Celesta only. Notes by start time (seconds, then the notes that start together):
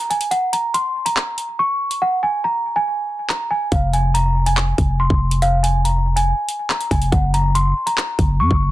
0.10 G#5
0.31 F#5
0.53 A#5
0.74 C6
1.06 A#5
1.59 C#6
2.02 F#5
2.23 G#5
2.44 A#5
2.76 G#5
3.29 A#5
3.51 G#5
3.72 F5
3.93 G#5
4.14 A#5
4.46 G#5
5.00 C6
5.42 F5
5.63 G#5
5.85 A#5
6.16 G#5
6.70 A#5
6.91 G#5
7.12 F#5
7.34 A#5
7.55 C6
7.87 A#5
8.40 C#6